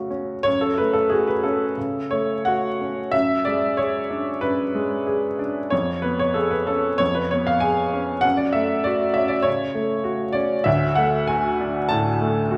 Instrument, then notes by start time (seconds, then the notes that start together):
upright piano
Already playing: C#3 A3 C#4 F#4 F#5
0.11 C#4
0.43 F#2 C#5
0.61 A4
0.78 A3 B4
0.93 A4
1.10 F#4 G#4
1.27 B4
1.43 C#4 A4
1.78 C#3
2.11 A3 C#5
2.45 F#4 F#5
2.81 C#4
3.12 F#2 E5
3.45 G#3 D5
3.77 G#4 C#5
4.10 D4
4.41 F#2 B4
4.75 G#3
5.07 G#4
5.39 D4
5.70 F2 C#5
6.02 B3 B4
6.19 C#5
6.34 G#4 A4
6.51 B4
6.67 C#4 A4
6.98 F2 C#5
7.15 B4
7.31 B3 C#5
7.47 F5
7.60 G#4 G#5
7.93 C#4
8.21 F#2 F#5
8.37 D5
8.53 A3 E5
8.84 F#4 D5
9.14 C#4 E5
9.28 D5
9.42 C#3 C#5
9.75 A3
10.04 F#4
10.33 C#4 D5
10.64 D2 E5
10.95 A3 F#5
11.27 F#4 G#5
11.61 D4
11.89 A2 A5
12.21 A3
12.51 F#4